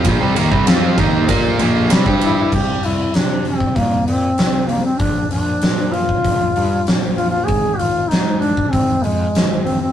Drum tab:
CC |----------------|x---------------|----------------|----------------|
RD |x-x-x-x-x-x-x-x-|----------------|----------------|----------------|
HH |----------------|--o-o-o-o-o-o-o-|o-o-o-o-o-o-o-o-|o-o-o-o-o-o-o-o-|
SD |----o-------o---|----o-------o---|----o-------o---|----o-------o---|
BD |o--o--o-o----o--|o------oo-------|o------oo-------|o------oo-------|